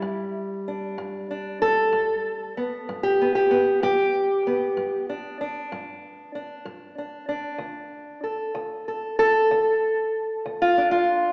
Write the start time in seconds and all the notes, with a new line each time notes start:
Already playing: G3 E4
0.02 G2
0.68 D4
0.98 G2
1.31 D4
1.62 A4
1.92 G2
2.57 B3
2.89 G2
3.03 G4
3.21 B3
3.35 G4
3.51 B3
3.83 G2 G4
4.47 B3
4.77 G2
5.09 D4
5.41 D4
5.72 G2
6.35 D4
6.65 G2
6.98 D4
7.29 D4
7.58 D2
8.24 A4
8.55 D2
8.88 A4
9.19 A4
9.51 D2
10.46 D2
10.62 F4
10.78 D4
10.91 F4